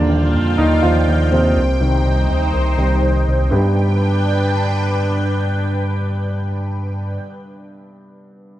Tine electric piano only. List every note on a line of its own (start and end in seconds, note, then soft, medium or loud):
0.10 0.30 D#2 medium
0.34 0.54 F2 medium
0.59 0.79 D#2 medium
0.83 1.03 D#2 medium
1.08 1.28 D#2 medium
1.32 1.52 D#2 medium
1.56 1.76 C2 medium
1.81 2.01 C2 medium
2.05 2.25 C2 medium
2.30 2.50 D2 medium
2.54 2.74 C2 medium
2.79 2.98 C2 medium
3.03 3.23 C2 medium
3.27 3.47 C2 medium
3.52 7.17 G2 medium